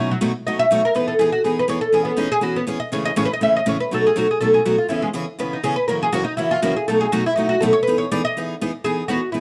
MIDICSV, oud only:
0, 0, Header, 1, 2, 480
1, 0, Start_track
1, 0, Key_signature, 4, "major"
1, 0, Tempo, 246711
1, 1844, Time_signature, 4, 2, 24, 8
1, 18291, End_track
2, 0, Start_track
2, 0, Title_t, "Oud"
2, 0, Program_c, 0, 24
2, 221, Note_on_c, 0, 54, 89
2, 341, Note_off_c, 0, 54, 0
2, 907, Note_on_c, 0, 75, 96
2, 1147, Note_off_c, 0, 75, 0
2, 1155, Note_on_c, 0, 76, 127
2, 1362, Note_off_c, 0, 76, 0
2, 1416, Note_on_c, 0, 73, 86
2, 1645, Note_off_c, 0, 73, 0
2, 1655, Note_on_c, 0, 70, 104
2, 1853, Note_off_c, 0, 70, 0
2, 1861, Note_on_c, 0, 71, 99
2, 2087, Note_off_c, 0, 71, 0
2, 2095, Note_on_c, 0, 69, 94
2, 2312, Note_off_c, 0, 69, 0
2, 2314, Note_on_c, 0, 68, 91
2, 2567, Note_off_c, 0, 68, 0
2, 2575, Note_on_c, 0, 66, 97
2, 2792, Note_off_c, 0, 66, 0
2, 2808, Note_on_c, 0, 68, 76
2, 3061, Note_off_c, 0, 68, 0
2, 3101, Note_on_c, 0, 71, 93
2, 3290, Note_off_c, 0, 71, 0
2, 3297, Note_on_c, 0, 73, 92
2, 3517, Note_off_c, 0, 73, 0
2, 3525, Note_on_c, 0, 69, 98
2, 3747, Note_off_c, 0, 69, 0
2, 3773, Note_on_c, 0, 68, 84
2, 3985, Note_on_c, 0, 59, 82
2, 4024, Note_off_c, 0, 68, 0
2, 4217, Note_off_c, 0, 59, 0
2, 4236, Note_on_c, 0, 63, 82
2, 4495, Note_off_c, 0, 63, 0
2, 4507, Note_on_c, 0, 68, 121
2, 4719, Note_off_c, 0, 68, 0
2, 4724, Note_on_c, 0, 66, 83
2, 4980, Note_off_c, 0, 66, 0
2, 4988, Note_on_c, 0, 59, 94
2, 5119, Note_off_c, 0, 59, 0
2, 5444, Note_on_c, 0, 75, 99
2, 5668, Note_off_c, 0, 75, 0
2, 5700, Note_on_c, 0, 73, 97
2, 5934, Note_off_c, 0, 73, 0
2, 5942, Note_on_c, 0, 75, 127
2, 6157, Note_off_c, 0, 75, 0
2, 6165, Note_on_c, 0, 73, 104
2, 6322, Note_off_c, 0, 73, 0
2, 6331, Note_on_c, 0, 71, 101
2, 6479, Note_off_c, 0, 71, 0
2, 6487, Note_on_c, 0, 75, 100
2, 6642, Note_off_c, 0, 75, 0
2, 6672, Note_on_c, 0, 76, 102
2, 6915, Note_off_c, 0, 76, 0
2, 6937, Note_on_c, 0, 75, 106
2, 7136, Note_off_c, 0, 75, 0
2, 7181, Note_on_c, 0, 73, 86
2, 7393, Note_off_c, 0, 73, 0
2, 7400, Note_on_c, 0, 71, 99
2, 7607, Note_off_c, 0, 71, 0
2, 7668, Note_on_c, 0, 69, 91
2, 7894, Note_off_c, 0, 69, 0
2, 7913, Note_on_c, 0, 68, 100
2, 8104, Note_off_c, 0, 68, 0
2, 8147, Note_on_c, 0, 66, 89
2, 8373, Note_off_c, 0, 66, 0
2, 8381, Note_on_c, 0, 68, 90
2, 8564, Note_off_c, 0, 68, 0
2, 8572, Note_on_c, 0, 69, 79
2, 8825, Note_off_c, 0, 69, 0
2, 8836, Note_on_c, 0, 68, 99
2, 9045, Note_off_c, 0, 68, 0
2, 9055, Note_on_c, 0, 66, 74
2, 9297, Note_off_c, 0, 66, 0
2, 9305, Note_on_c, 0, 65, 79
2, 9506, Note_off_c, 0, 65, 0
2, 9514, Note_on_c, 0, 64, 77
2, 9773, Note_on_c, 0, 56, 90
2, 9776, Note_off_c, 0, 64, 0
2, 9909, Note_off_c, 0, 56, 0
2, 10505, Note_on_c, 0, 71, 87
2, 10752, Note_off_c, 0, 71, 0
2, 10763, Note_on_c, 0, 63, 76
2, 10969, Note_off_c, 0, 63, 0
2, 10969, Note_on_c, 0, 68, 93
2, 11199, Note_off_c, 0, 68, 0
2, 11207, Note_on_c, 0, 71, 106
2, 11428, Note_off_c, 0, 71, 0
2, 11436, Note_on_c, 0, 70, 91
2, 11697, Note_off_c, 0, 70, 0
2, 11724, Note_on_c, 0, 68, 101
2, 11920, Note_on_c, 0, 66, 103
2, 11929, Note_off_c, 0, 68, 0
2, 12143, Note_off_c, 0, 66, 0
2, 12151, Note_on_c, 0, 63, 97
2, 12382, Note_off_c, 0, 63, 0
2, 12392, Note_on_c, 0, 64, 80
2, 12655, Note_off_c, 0, 64, 0
2, 12667, Note_on_c, 0, 65, 109
2, 12881, Note_off_c, 0, 65, 0
2, 12889, Note_on_c, 0, 66, 79
2, 13143, Note_off_c, 0, 66, 0
2, 13162, Note_on_c, 0, 68, 90
2, 13368, Note_off_c, 0, 68, 0
2, 13385, Note_on_c, 0, 69, 94
2, 13624, Note_off_c, 0, 69, 0
2, 13631, Note_on_c, 0, 68, 108
2, 13843, Note_off_c, 0, 68, 0
2, 13856, Note_on_c, 0, 66, 96
2, 14107, Note_off_c, 0, 66, 0
2, 14131, Note_on_c, 0, 64, 108
2, 14307, Note_off_c, 0, 64, 0
2, 14315, Note_on_c, 0, 63, 81
2, 14566, Note_off_c, 0, 63, 0
2, 14574, Note_on_c, 0, 66, 100
2, 14793, Note_off_c, 0, 66, 0
2, 14798, Note_on_c, 0, 69, 86
2, 15030, Note_off_c, 0, 69, 0
2, 15038, Note_on_c, 0, 73, 122
2, 15220, Note_off_c, 0, 73, 0
2, 15228, Note_on_c, 0, 71, 105
2, 15511, Note_off_c, 0, 71, 0
2, 15527, Note_on_c, 0, 73, 104
2, 15749, Note_off_c, 0, 73, 0
2, 15793, Note_on_c, 0, 74, 99
2, 16035, Note_off_c, 0, 74, 0
2, 16046, Note_on_c, 0, 75, 127
2, 16484, Note_off_c, 0, 75, 0
2, 17210, Note_on_c, 0, 68, 105
2, 17663, Note_off_c, 0, 68, 0
2, 17670, Note_on_c, 0, 66, 101
2, 18129, Note_off_c, 0, 66, 0
2, 18137, Note_on_c, 0, 64, 90
2, 18291, Note_off_c, 0, 64, 0
2, 18291, End_track
0, 0, End_of_file